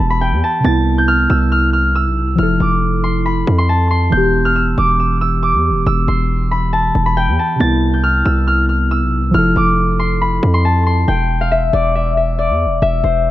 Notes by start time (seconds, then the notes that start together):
Already playing: E3 B3 G4 A5
0.00 E1
0.10 B5
0.21 G5
0.32 E2
0.44 A5
0.60 C3 B3
0.65 C2 E4 A6
0.98 G6
1.08 F6
1.30 C2 E6
1.52 F6
1.73 F6
1.95 E6
2.06 B1
2.22 C2
2.35 F1 F3 E4 F6
2.43 A4
2.60 F1 D6
3.04 C6
3.26 B5
3.47 F2
3.58 C6
3.69 A5
3.91 C6
4.10 E1 E3 B3 G6
4.17 G4
4.45 F6
4.56 E6
4.78 E1 D6
5.00 E6
5.21 E6
5.43 D6
5.54 E2
5.70 E1
5.86 E1 E6
6.08 E1 C6
6.51 B5
6.73 A5
6.95 E1
7.06 B5
7.17 G5
7.28 E2
7.39 A5
7.56 C3 B3
7.60 C2 E4 A6
7.94 G6
8.04 F6
8.25 C2 E6
8.47 F6
8.69 F6
8.91 E6
9.02 B1
9.18 C2
9.31 F1 F3 E4 F6
9.38 A4
9.56 F1 D6
9.99 C6
10.21 B5
10.43 F2
10.54 C6
10.65 A5
10.86 C6
11.08 E1 G5
11.41 F5
11.52 E5
11.73 E1 D5
11.95 E5
12.17 E5
12.39 D5
12.49 E2
12.66 E1
12.82 E1 E5
13.04 E1 C5